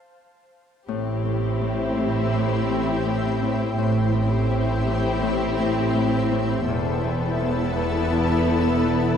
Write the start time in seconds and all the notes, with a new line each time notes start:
0.88 A1 A2 C4 E4 G4 C5 E5 G5
1.25 A2
1.61 A2
1.97 A2
2.34 A2
2.70 A2
3.06 A2
3.42 A2
3.78 A1 A2 C4 E4 G4 C5 E5 G5
4.15 A2
4.51 A2
4.87 A2
5.23 A2
5.59 A2
5.95 A2
6.32 A2
6.67 E1 E2 B3 E4 A4 B4 E5 A5
7.04 E2
7.40 E2
7.76 E2
8.12 E2
8.47 E2
8.84 E2